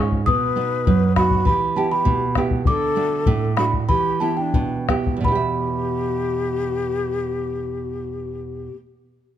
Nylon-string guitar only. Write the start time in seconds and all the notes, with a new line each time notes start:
Already playing: G#2 G#3 C#4 F4
0.27 B2
0.56 B3 D#4 F#4
0.87 F#2
1.16 B3 D#4 F#4
1.45 E3
1.76 B3 E4 G4
2.05 B2
2.37 B3 E4 G4
2.67 D3
2.96 A3 D4 F#4
3.27 A2
3.58 A3 D4 F#4
3.89 E3
4.21 B3 E4 G4
4.54 B2
4.89 B3 E4 G4
5.17 E2
5.21 B2 B3
5.28 E4 G4
5.35 E5